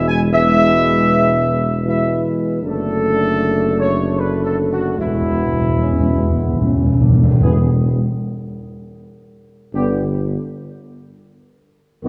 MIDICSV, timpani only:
0, 0, Header, 1, 2, 480
1, 0, Start_track
1, 0, Tempo, 768246
1, 199, Time_signature, 3, 2, 24, 8
1, 2118, Tempo, 803213
1, 4518, Tempo, 773196
1, 7422, End_track
2, 0, Start_track
2, 0, Title_t, "Timpani"
2, 0, Program_c, 0, 47
2, 3069, Note_on_c, 0, 40, 30
2, 3108, Note_off_c, 0, 40, 0
2, 3115, Note_on_c, 0, 40, 29
2, 3157, Note_off_c, 0, 40, 0
2, 3164, Note_on_c, 0, 40, 32
2, 3202, Note_off_c, 0, 40, 0
2, 3209, Note_on_c, 0, 40, 33
2, 3252, Note_off_c, 0, 40, 0
2, 3258, Note_on_c, 0, 40, 33
2, 3293, Note_off_c, 0, 40, 0
2, 3300, Note_on_c, 0, 40, 33
2, 3344, Note_off_c, 0, 40, 0
2, 3351, Note_on_c, 0, 40, 35
2, 3391, Note_off_c, 0, 40, 0
2, 3398, Note_on_c, 0, 40, 39
2, 3436, Note_off_c, 0, 40, 0
2, 3443, Note_on_c, 0, 40, 39
2, 3484, Note_off_c, 0, 40, 0
2, 3494, Note_on_c, 0, 40, 40
2, 3529, Note_off_c, 0, 40, 0
2, 3536, Note_on_c, 0, 40, 40
2, 3578, Note_off_c, 0, 40, 0
2, 3586, Note_on_c, 0, 40, 41
2, 3623, Note_off_c, 0, 40, 0
2, 3630, Note_on_c, 0, 40, 42
2, 3668, Note_off_c, 0, 40, 0
2, 3675, Note_on_c, 0, 40, 44
2, 3717, Note_off_c, 0, 40, 0
2, 3723, Note_on_c, 0, 40, 45
2, 3764, Note_off_c, 0, 40, 0
2, 3770, Note_on_c, 0, 40, 48
2, 3806, Note_off_c, 0, 40, 0
2, 3813, Note_on_c, 0, 40, 50
2, 3850, Note_off_c, 0, 40, 0
2, 3858, Note_on_c, 0, 40, 50
2, 3897, Note_off_c, 0, 40, 0
2, 3905, Note_on_c, 0, 40, 52
2, 3943, Note_off_c, 0, 40, 0
2, 3950, Note_on_c, 0, 40, 54
2, 3990, Note_off_c, 0, 40, 0
2, 3997, Note_on_c, 0, 40, 56
2, 4036, Note_off_c, 0, 40, 0
2, 4043, Note_on_c, 0, 40, 61
2, 4082, Note_off_c, 0, 40, 0
2, 4089, Note_on_c, 0, 40, 62
2, 4126, Note_off_c, 0, 40, 0
2, 4133, Note_on_c, 0, 40, 63
2, 4175, Note_off_c, 0, 40, 0
2, 4182, Note_on_c, 0, 40, 68
2, 4223, Note_off_c, 0, 40, 0
2, 4230, Note_on_c, 0, 40, 68
2, 4272, Note_off_c, 0, 40, 0
2, 4279, Note_on_c, 0, 40, 71
2, 4321, Note_off_c, 0, 40, 0
2, 4328, Note_on_c, 0, 40, 74
2, 4362, Note_off_c, 0, 40, 0
2, 4369, Note_on_c, 0, 40, 73
2, 4409, Note_off_c, 0, 40, 0
2, 4416, Note_on_c, 0, 40, 80
2, 4456, Note_off_c, 0, 40, 0
2, 4463, Note_on_c, 0, 40, 81
2, 4506, Note_off_c, 0, 40, 0
2, 4519, Note_on_c, 0, 40, 75
2, 5222, Note_off_c, 0, 40, 0
2, 7422, End_track
0, 0, End_of_file